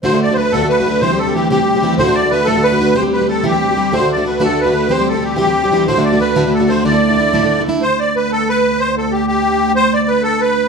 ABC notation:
X:1
M:6/8
L:1/16
Q:3/8=123
K:Dmix
V:1 name="Accordion"
c2 d3/2 c/2 B2 A2 B4 | c2 A2 G2 G6 | c2 d2 B2 A2 B4 | c2 B2 A2 G6 |
c2 d2 B2 A2 B4 | c2 A2 G2 G6 | c2 d2 B4 A2 c2 | d8- d2 z2 |
c2 d2 B2 A2 B4 | c2 A2 G2 G6 | c2 d2 B2 A2 B4 |]
V:2 name="Steel-string acoustic guitar"
[D,,A,,D,A,DF] [D,A,DF]2 [D,A,DF] [D,A,DF]2 [D,,A,,D,A,DF] [D,A,DF]2 [D,A,DF] [D,A,DF]2 | [C,E,G,CG] [G,CG]2 [G,CG] [E,G,CG]2 [C,E,G,CG] [G,CG]2 [G,CG] [E,G,CG]2 | [D,,A,,D,A,DF] [D,A,DF]2 [D,A,DF] [D,A,DF]2 [D,,A,,D,A,DF] [D,A,DF]2 [D,A,DF] [D,A,DF]2 | [C,E,G,CG] [G,CG]2 [G,CG] [E,G,CG]2 [C,E,G,CG] [G,CG]2 [G,CG] [E,G,CG]2 |
[D,,A,,D,A,DF] [D,A,DF]2 [D,A,DF] [D,A,DF]2 [D,,A,,D,A,DF] [D,A,DF]2 [D,A,DF] [D,A,DF]2 | [C,E,G,CG] [G,CG]2 [G,CG] [E,G,CG]2 [C,E,G,CG] [G,C]2 [G,CG] [E,G,CG]2 | [D,,A,,D,A,DF] [D,A,DF]2 [D,A,DF] [D,A,DF]2 [D,,A,,D,A,DF] [D,A,DF]2 [D,A,DF] [D,A,DF]2 | [D,,A,,D,A,DE] [D,A,DE]2 [D,A,DE] [D,A,DE]2 [D,,A,,D,A,DE] [D,A,DE]2 [D,A,DE] [D,A,DE]2 |
z12 | z12 | z12 |]
V:3 name="String section" clef=bass
[D,,D,]12- | [D,,D,]12- | [D,,D,]12- | [D,,D,]12 |
[D,,D,]12- | [D,,D,]12- | [D,,D,]12- | [D,,D,]12 |
[D,,D,]12- | [D,,D,]12- | [D,,D,]12 |]